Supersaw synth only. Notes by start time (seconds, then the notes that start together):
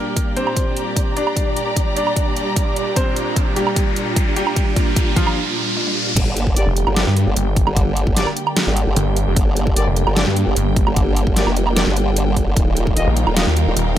Already playing: A#2 G3 D4 G4
6.16 G3 A#3
12.57 D#3 F4